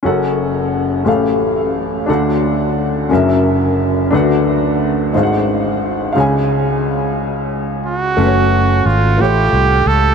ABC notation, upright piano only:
X:1
M:6/8
L:1/8
Q:3/8=59
K:F#m
V:1 name="Upright piano"
[CFAf]3 [C=GA^e]3 | [DFAf]3 [CF^Ae]3 | [DFBf]3 [^DG^B^ef]3 | [Gc^eg]6 |
[A,CFBc]2 z [A,^E=Gc]2 z |]
V:2 name="Upright piano" clef=bass
[F,,,F,,]3 [A,,,A,,]3 | [D,,D,]3 [F,,,F,,]3 | [D,,D,]3 [G,,,G,,]3 | [C,,C,]6 |
z3 A,,3 |]